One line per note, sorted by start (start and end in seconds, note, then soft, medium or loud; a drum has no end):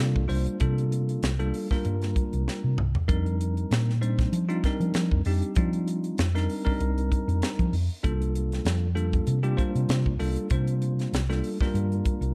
0.00 0.15 C3 medium
0.00 0.23 G3 medium
0.00 0.24 A#3 medium
0.00 0.24 D4 medium
0.00 0.24 F4 medium
0.00 0.23 A4 medium
0.15 0.29 C2 medium
0.15 kick medium
0.28 0.45 C2 medium
0.28 0.57 G3 medium
0.28 0.58 A#3 medium
0.28 0.57 D4 medium
0.28 0.57 F4 medium
0.28 0.58 C5 medium
0.28 open hi-hat medium
0.46 closed hi-hat soft
0.60 1.16 C3 medium
0.60 1.31 G3 medium
0.60 1.30 A#3 medium
0.60 1.30 D4 medium
0.60 1.30 F4 medium
0.60 1.30 A4 medium
0.60 kick loud
0.60 closed hi-hat medium
0.78 closed hi-hat soft
0.92 closed hi-hat medium
1.09 closed hi-hat soft
1.23 1.51 C2 medium
1.23 snare loud
1.23 closed hi-hat medium
1.39 1.67 G3 medium
1.39 1.67 A#3 medium
1.39 1.67 D4 medium
1.39 1.67 F4 medium
1.39 1.67 A4 medium
1.39 closed hi-hat soft
1.54 open hi-hat medium
1.71 2.79 G3 medium
1.71 2.79 A#3 medium
1.71 2.79 D4 medium
1.71 2.80 F4 medium
1.71 2.79 A#4 medium
1.71 kick medium
1.71 snare soft
1.85 2.13 G2 medium
1.85 closed hi-hat medium
2.02 snare soft
2.02 closed hi-hat soft
2.16 kick medium
2.16 closed hi-hat medium
2.33 2.46 C2 medium
2.33 closed hi-hat soft
2.48 snare medium
2.64 2.77 C3 medium
2.78 2.93 C2 medium
2.78 mid tom medium
2.95 floor tom medium
3.08 3.64 F2 medium
3.08 3.92 G3 medium
3.08 3.92 C4 medium
3.08 3.92 D4 medium
3.08 3.92 D#4 medium
3.08 3.92 A#4 medium
3.08 kick loud
3.08 closed hi-hat medium
3.26 closed hi-hat soft
3.41 closed hi-hat medium
3.57 closed hi-hat soft
3.71 4.26 A#2 medium
3.71 snare loud
3.71 closed hi-hat medium
3.90 snare soft
4.01 4.44 G3 medium
4.01 4.44 C4 medium
4.01 4.44 D4 medium
4.01 4.44 D#4 medium
4.01 4.44 C5 medium
4.01 closed hi-hat medium
4.19 kick medium
4.19 snare soft
4.19 closed hi-hat soft
4.32 4.60 F3 medium
4.32 closed hi-hat medium
4.49 4.62 G3 medium
4.49 4.62 C4 medium
4.49 4.62 D4 medium
4.49 4.62 D#4 medium
4.49 4.62 F4 loud
4.49 closed hi-hat soft
4.64 5.20 G3 medium
4.64 5.20 C4 medium
4.64 5.20 D4 medium
4.64 5.20 D#4 medium
4.64 5.20 A#4 medium
4.64 kick medium
4.64 snare soft
4.64 closed hi-hat medium
4.80 4.93 F3 medium
4.80 closed hi-hat soft
4.94 5.10 F3 loud
4.94 snare loud
4.94 closed hi-hat medium
5.11 5.24 F2 medium
5.11 kick medium
5.25 5.41 F2 medium
5.25 5.54 G3 medium
5.25 5.54 C4 medium
5.25 5.54 D4 medium
5.25 5.54 D#4 medium
5.25 5.54 G4 medium
5.25 open hi-hat medium
5.42 closed hi-hat soft
5.55 6.11 F3 medium
5.55 6.25 G3 medium
5.55 6.26 C4 medium
5.55 6.26 D4 medium
5.55 6.26 D#4 medium
5.55 6.26 F4 medium
5.55 kick loud
5.55 closed hi-hat medium
5.73 closed hi-hat soft
5.88 closed hi-hat medium
6.04 closed hi-hat soft
6.18 6.46 F2 medium
6.18 snare loud
6.18 closed hi-hat medium
6.35 6.62 G3 medium
6.35 6.62 C4 medium
6.35 6.62 D4 medium
6.35 6.63 D#4 medium
6.35 6.62 A#4 medium
6.35 snare soft
6.35 closed hi-hat soft
6.49 open hi-hat medium
6.65 7.74 G3 medium
6.65 7.73 C4 medium
6.65 7.74 D4 medium
6.65 7.74 D#4 medium
6.65 7.73 A#4 loud
6.65 kick medium
6.80 7.08 C2 medium
6.80 closed hi-hat medium
6.98 closed hi-hat soft
7.12 kick medium
7.12 closed hi-hat medium
7.28 7.41 F2 medium
7.28 closed hi-hat soft
7.42 snare medium
7.42 closed hi-hat medium
7.59 7.71 F3 medium
7.59 kick medium
7.59 closed hi-hat soft
7.73 7.88 F2 medium
7.73 open hi-hat medium
8.03 8.59 C2 medium
8.03 8.86 G3 medium
8.03 8.87 A#3 medium
8.03 8.86 D4 medium
8.03 8.87 F4 medium
8.03 8.87 A4 medium
8.03 kick loud
8.03 closed hi-hat medium
8.22 closed hi-hat soft
8.35 closed hi-hat medium
8.52 snare soft
8.52 closed hi-hat soft
8.65 9.20 F2 medium
8.65 snare loud
8.65 closed hi-hat medium
8.95 9.38 G3 medium
8.95 9.38 A#3 medium
8.95 9.38 D4 medium
8.95 9.38 F4 medium
8.95 9.38 A4 medium
8.95 closed hi-hat soft
9.13 kick medium
9.13 closed hi-hat soft
9.27 9.55 C3 medium
9.27 closed hi-hat medium
9.43 9.56 G3 medium
9.43 9.56 A#3 medium
9.43 9.56 D4 medium
9.43 9.56 F4 medium
9.43 9.56 G4 loud
9.43 closed hi-hat soft
9.57 10.13 G3 medium
9.57 10.13 A#3 medium
9.57 10.13 D4 medium
9.57 10.13 F4 medium
9.57 10.13 C5 medium
9.57 kick medium
9.57 closed hi-hat medium
9.75 9.88 C3 medium
9.75 closed hi-hat soft
9.89 10.04 C3 loud
9.89 snare loud
9.89 closed hi-hat medium
10.06 10.18 C2 medium
10.06 kick medium
10.19 10.35 C2 medium
10.19 10.48 G3 medium
10.19 10.47 A#3 medium
10.19 10.47 D4 medium
10.19 10.47 F4 medium
10.19 10.48 A4 medium
10.19 open hi-hat medium
10.36 closed hi-hat soft
10.50 11.05 C3 loud
10.50 11.20 G3 medium
10.50 11.20 A#3 medium
10.50 11.20 D4 medium
10.50 11.20 F4 medium
10.50 11.20 C5 medium
10.50 kick loud
10.50 closed hi-hat medium
10.67 closed hi-hat soft
10.82 closed hi-hat medium
10.99 snare soft
10.99 closed hi-hat soft
11.13 11.40 C2 medium
11.13 snare loud
11.13 closed hi-hat medium
11.29 11.56 G3 medium
11.29 11.57 A#3 medium
11.29 11.57 D4 medium
11.29 11.56 F4 medium
11.29 11.56 A4 medium
11.29 snare soft
11.29 closed hi-hat soft
11.44 open hi-hat medium
11.61 12.34 G3 medium
11.61 12.34 A#3 medium
11.61 12.34 D4 medium
11.61 12.34 F4 medium
11.61 12.34 A#4 loud
11.61 kick medium
11.61 snare soft
11.74 12.01 G2 medium
11.74 closed hi-hat medium
11.92 closed hi-hat soft
12.05 kick medium
12.05 closed hi-hat medium
12.21 12.34 C2 medium
12.21 closed hi-hat soft